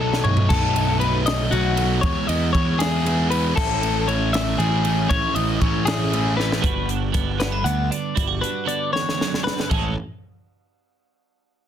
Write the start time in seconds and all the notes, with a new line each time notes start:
Already playing: B1 A4
0.00 B2 F#3 A3 D#4
0.13 snare
0.24 A3 D#4 C#5, floor tom
0.28 F#3
0.37 floor tom
0.49 B1 B2 F#3 A3 D#4 A4, kick, crash
0.76 F#3 A3 D#4, ride
0.99 B2 F#3 A3 D#4 B4, ride
1.25 F#3 A3 D#4 D#5, snare, ride
1.51 B1 B2 F#3 A3 D#4 F#4, ride
1.76 F#3 A3 D#4, ride
2.01 E2 E3 G#3 B3 E4 C#5, kick, ride
2.27 E2 G#3 B3 E4 D#5, ride
2.53 E2 E3 G#3 B3 E4 C#5, kick, ride
2.79 G#3 B3 E4 G#4, snare, ride
3.05 E3 G#3 B3 E4, ride
3.30 G#3 B3 E4 B4, ride
3.56 A1 A2 E3 A3 C#4 E4 A4, kick, crash
3.81 A3 C#4 E4, ride
4.07 E3 A3 C#4 E4 C#5, ride
4.33 A3 C#4 E4 E5, snare, ride
4.58 A1 E3 A3 C#4 E4 G#4, ride
4.84 A3 C#4 E4, ride
5.09 A1 A2 E3 A3 C#4 E4 C#5, kick, ride
5.35 A1 A3 C#4 E4 D#5, ride
5.60 A1 E3 A3 C#4 E4 C#5, kick, ride
5.85 C#4 E4 G#4, snare, ride
5.90 A3
6.12 E3 A3 C#4 E4, ride
6.37 A3 C#4 E4 B4, snare
6.52 snare
6.61 G1 G2 D3 B3 D4 F#4 B4, kick, closed hi-hat
6.89 D4, closed hi-hat
7.12 G1 D3 B3, kick, closed hi-hat
7.38 B3 B4, snare, closed hi-hat
7.52 D4
7.64 D2 D3 B3 F#5, closed hi-hat
7.91 D4 D5, closed hi-hat
8.15 G1 G2 E4, kick, closed hi-hat
8.27 F#4
8.41 D4 B4, closed hi-hat
8.65 D3 B3 D5, closed hi-hat
8.92 E2 C#5, snare
9.09 snare
9.17 F#2, snare
9.34 snare
9.43 G2 B4
9.47 snare
9.60 snare
9.69 A1 A2 E3 G#3 C#4 G#4 A4, kick, crash